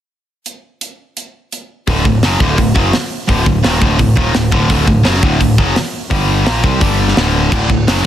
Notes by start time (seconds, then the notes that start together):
0.46 closed hi-hat
0.81 closed hi-hat
1.17 closed hi-hat
1.52 closed hi-hat
1.87 D1 D2 A2 D3, kick, open hi-hat
2.05 D1 D2 A2, kick
2.22 F#1 F#2 C#3 F#3, snare, open hi-hat
2.40 D1 D2 A2 D3, kick
2.57 D1 D2 A2, kick, open hi-hat
2.75 F#1 F#2 C#3 F#3, kick
2.93 snare, open hi-hat
3.28 D1 D2 A2 D3, kick, open hi-hat
3.46 D1 D2 A2, kick
3.63 D#1 D#2 A#2 D#3, snare, open hi-hat
3.73 snare
3.81 D1 D2 A2 D3, kick
3.99 D1 D2 A2, kick, open hi-hat
4.16 D#1 D#2 A#2 D#3, kick
4.34 D1 D2 A2, snare, open hi-hat
4.51 D1 D2 A2 D3, kick
4.69 D1 D2 A2 D3, kick, open hi-hat
4.86 D1 D2 A2, kick
5.03 F#1 F#2 C#3 F#3, snare, open hi-hat
5.14 snare
5.22 D1 D2 A2 D3, kick
5.40 D1 D2 A2, kick, open hi-hat
5.58 F#1 F#2 C#3 F#3, kick
5.76 snare, open hi-hat
6.10 G1 G2 D3 G3, kick, open hi-hat
6.45 A#1 A#2 F3 A#3, snare, open hi-hat
6.63 C2 C3 G3 C4, kick
6.80 G1 G2 D3 G3, kick, open hi-hat
7.08 snare
7.16 D1 D2 A2 D3, snare, open hi-hat
7.51 D1 D2 A2 D3, kick, crash
7.69 D1 D2 A2, kick
7.87 F#1 F#2 C#3 F#3, snare, open hi-hat
7.97 snare